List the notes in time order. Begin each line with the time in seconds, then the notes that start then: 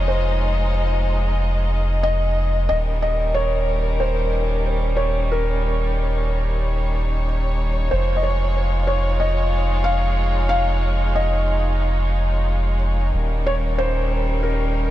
Already playing: F1 G#3 D#4 F4 D#5
0.08 C5
2.03 D#5
2.69 D#1 G3 C#4 D#4 A#4 D#5
3.02 D#5
3.34 C#5
4.00 C5
4.97 C#5
5.32 A#4 C#5
7.91 F1 G#3 F4 C5
8.17 D#5
8.23 C#5
8.87 C#5
9.20 D#5
9.84 F5
10.49 F5
11.16 D#5
13.13 D#1 G3 C#4 A#4
13.46 C#5
13.78 C5
14.43 A#4